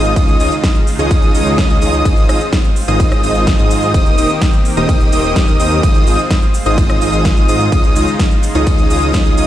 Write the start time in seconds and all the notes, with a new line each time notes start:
Already playing: G#1 G#3 C4 D#4 F4 G#4 C5 D#5 D#6
0.05 closed hi-hat, shaker
0.16 C#2 C#3 D#4 F4 G#4 C#5 D#5 D#6, kick, closed hi-hat, ride, shaker
0.28 closed hi-hat, shaker
0.40 C#2 D#4 F4 G#4 C#5 D#5 D#6, open hi-hat, shaker
0.52 closed hi-hat, shaker
0.64 kick, snare, closed hi-hat, ride, shaker
0.75 closed hi-hat, shaker
0.87 open hi-hat, shaker
0.99 C#2 D#4 F4 G#4 C#5 D#5 D#6, closed hi-hat, shaker
1.11 kick, closed hi-hat, ride, shaker
1.23 closed hi-hat, shaker
1.34 C#2 D#4 F4 G#4 C#5 D#5 D#6, open hi-hat, shaker
1.46 closed hi-hat, shaker
1.58 kick, snare, closed hi-hat, ride, shaker
1.70 C#2 D#4 F4 G#4 C#5 D#5 D#6, closed hi-hat, shaker
1.82 C#2 D#4 F4 G#4 C#5 D#5 D#6, open hi-hat, shaker
1.94 closed hi-hat, shaker
2.05 G#1 C4 D#4 F4 G#4 C5 D#5 D#6, kick, closed hi-hat, ride, shaker
2.17 closed hi-hat, shaker
2.29 G#1 D#4 F4 G#4 C5 D#5 D#6, cross-stick, open hi-hat, shaker
2.41 closed hi-hat, shaker
2.53 kick, snare, closed hi-hat, ride, shaker
2.64 closed hi-hat, shaker
2.76 open hi-hat, shaker
2.88 G#1 D#4 F4 G#4 C5 D#5 D#6, shaker
3.00 kick, closed hi-hat, ride, shaker
3.12 cross-stick, closed hi-hat, shaker
3.23 G#1 D#4 F4 G#4 C5 D#5 D#6, open hi-hat, shaker
3.35 closed hi-hat, shaker
3.47 kick, snare, closed hi-hat, ride, shaker
3.59 G#2 D#4 F4 G#4 C5 D#5 D#6, closed hi-hat, shaker
3.71 open hi-hat, shaker
3.83 closed hi-hat, shaker
3.94 D#1 D#3 A#3 D#4 G4 A#4 C5 D#5 D#6, kick, closed hi-hat, ride, shaker
4.06 closed hi-hat, shaker
4.18 D#1 D#4 G4 A#4 C5 D#5 D#6, open hi-hat, shaker
4.30 closed hi-hat, shaker
4.42 kick, snare, closed hi-hat, ride, shaker
4.53 closed hi-hat, shaker
4.65 open hi-hat, shaker
4.77 D#1 D#4 G4 A#4 C5 D#5 D#6, closed hi-hat, shaker
4.89 kick, closed hi-hat, ride, shaker
5.01 closed hi-hat, shaker
5.12 D#1 D#4 G4 A#4 C5 D#5 D#6, open hi-hat, shaker
5.24 closed hi-hat, shaker
5.36 kick, snare, closed hi-hat, ride, shaker
5.48 D#1 D#4 G4 A#4 C5 D#5 D#6, closed hi-hat, shaker
5.60 D#2 D#4 G4 A#4 C5 D#5 D#6, open hi-hat, shaker
5.72 shaker
5.83 G#1 G#3 D#4 F4 G#4 C5 D#5 D#6, kick, closed hi-hat, ride, shaker
5.95 closed hi-hat, shaker
6.07 G#1 D#4 F4 G#4 C5 D#5 D#6, open hi-hat, shaker
6.19 closed hi-hat, shaker
6.31 kick, snare, closed hi-hat, ride, shaker
6.42 closed hi-hat, shaker
6.54 open hi-hat, shaker
6.66 G#1 D#4 F4 G#4 C5 D#5 D#6, closed hi-hat, shaker
6.78 kick, closed hi-hat, ride, shaker
6.90 cross-stick, closed hi-hat, shaker
7.01 G#1 D#4 F4 G#4 C5 D#5 D#6, open hi-hat, shaker
7.13 closed hi-hat, shaker
7.25 kick, snare, closed hi-hat, ride, shaker
7.37 G#1 D#4 F4 G#4 C5 D#5 D#6, closed hi-hat, shaker
7.49 G#2 D#4 F4 G#4 C5 D#5 D#6, open hi-hat, shaker
7.60 closed hi-hat, shaker
7.72 C#2 C#3 D#4 F4 G#4 C#5 D#5 D#6, kick, closed hi-hat, ride, shaker
7.84 closed hi-hat, shaker
7.96 C#2 D#4 F4 G#4 C#5 D#5 D#6, open hi-hat, shaker
8.08 closed hi-hat, shaker
8.19 kick, snare, closed hi-hat, ride, shaker
8.31 closed hi-hat, shaker
8.43 open hi-hat, shaker
8.55 C#2 D#4 F4 G#4 C#5 D#5 D#6, shaker
8.67 kick, closed hi-hat, ride, shaker
8.79 closed hi-hat, shaker
8.90 C#2 D#4 F4 G#4 C#5 D#5 D#6, open hi-hat, shaker
9.02 closed hi-hat, shaker
9.14 kick, snare, closed hi-hat, ride, shaker
9.26 C#2 D#4 F4 G#4 C#5 D#5 D#6, closed hi-hat, shaker
9.38 C#2 D#4 F4 G#4 C#5 D#5 D#6, open hi-hat, shaker